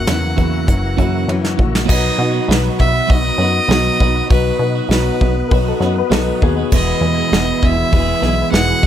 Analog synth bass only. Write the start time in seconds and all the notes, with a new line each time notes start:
0.08 E2
0.38 E2
0.68 F#1
0.98 F#2
1.28 F#2
1.59 A#1
1.90 B1
2.18 B2
2.48 B1
2.80 B1
3.10 B1
3.38 F#2
3.68 B1
4.01 B1
4.30 B1
4.59 B2
4.89 B1
5.22 B1
5.52 B1
5.80 F#2
6.11 B1
6.42 D#2
6.72 E1
7.01 E2
7.32 E1
7.63 E1
7.93 E1
8.22 B1
8.52 E1
8.83 E1